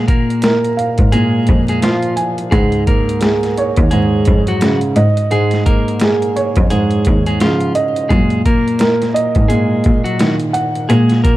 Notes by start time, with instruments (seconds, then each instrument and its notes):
Already playing: cello A#2, upright piano A#2
0.08 clean electric guitar A#3 A#4, kick, closed hi-hat
0.30 closed hi-hat
0.42 upright piano A#4, snare, closed hi-hat
0.65 closed hi-hat
0.77 upright piano F5, closed hi-hat
0.98 cello G#2, kick, closed hi-hat
1.12 upright piano A#2, clean electric guitar G#3 G#4, closed hi-hat
1.47 cello F2, kick, closed hi-hat
1.68 clean electric guitar G#3 G#4, closed hi-hat
1.82 upright piano F3, clean electric guitar F3 F4, snare, closed hi-hat
2.02 closed hi-hat
2.16 upright piano G#5, closed hi-hat
2.38 closed hi-hat
2.51 cello C#2, upright piano G#2, clean electric guitar G#3 G#4, kick, closed hi-hat
2.72 closed hi-hat
2.87 clean electric guitar A#3 A#4, kick, closed hi-hat
3.09 closed hi-hat
3.21 upright piano G#4, snare, closed hi-hat
3.43 snare, closed hi-hat
3.57 upright piano C#5, closed hi-hat
3.76 cello D#2, kick, closed hi-hat
3.91 upright piano G#2, clean electric guitar G#3 G#4, closed hi-hat
4.25 cello F2, kick, closed hi-hat
4.47 clean electric guitar F#3 F#4, closed hi-hat
4.61 upright piano C#3, snare, closed hi-hat
4.81 closed hi-hat
4.96 cello G#2, upright piano D#5, closed hi-hat
5.17 closed hi-hat
5.31 upright piano G#2, clean electric guitar G#3 G#4, closed hi-hat
5.51 snare, closed hi-hat
5.66 clean electric guitar A#3 A#4, kick, closed hi-hat
5.88 closed hi-hat
6.00 upright piano G#4, snare, closed hi-hat
6.22 closed hi-hat
6.36 upright piano C#5, closed hi-hat
6.56 cello F2, kick, closed hi-hat
6.70 upright piano G#2, clean electric guitar G#3 G#4, closed hi-hat
6.91 closed hi-hat
7.05 cello D#2, kick, closed hi-hat
7.26 clean electric guitar G#3 G#4, closed hi-hat
7.40 upright piano C#3, clean electric guitar F3 F4, snare, closed hi-hat
7.60 closed hi-hat
7.75 upright piano D#5, closed hi-hat
7.96 closed hi-hat
8.09 cello F#2, upright piano A#2, clean electric guitar G#3 G#4, kick, closed hi-hat
8.30 closed hi-hat
8.46 clean electric guitar A#3 A#4, kick, closed hi-hat
8.68 closed hi-hat
8.79 upright piano A#4, snare, closed hi-hat
9.02 snare, closed hi-hat
9.14 upright piano D#5, closed hi-hat
9.35 cello G#2, kick, closed hi-hat
9.48 upright piano A#2, clean electric guitar G#3 G#4, closed hi-hat
9.84 cello A#2, kick, closed hi-hat
10.04 clean electric guitar F#3 F#4, closed hi-hat
10.19 upright piano D#3, snare, closed hi-hat
10.40 closed hi-hat
10.53 upright piano F#5, closed hi-hat
10.75 closed hi-hat
10.89 upright piano A#2, cello A#2, clean electric guitar G#3 G#4, closed hi-hat
11.09 snare, closed hi-hat
11.24 clean electric guitar A#3 A#4, kick, closed hi-hat